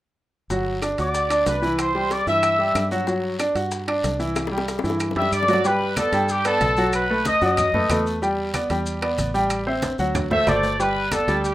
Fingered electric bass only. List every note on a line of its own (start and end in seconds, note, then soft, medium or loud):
0.50 0.95 G1 medium
0.99 1.43 D2 medium
1.46 2.21 C2 medium
2.27 2.72 G2 medium
2.75 3.50 G2 medium
3.55 4.00 G2 medium
4.04 4.79 C2 medium
4.84 5.14 G2 medium
5.16 5.31 F#2 medium
5.32 6.07 G2 medium
6.12 6.57 G2 medium
6.61 7.36 B1 medium
7.42 7.71 F#2 loud
7.73 7.88 F#2 medium
7.89 8.64 E2 medium
8.70 9.15 E2 medium
9.19 9.93 A1 medium
9.99 10.44 D2 medium
10.47 11.22 G1 medium
11.28 11.54 D2 medium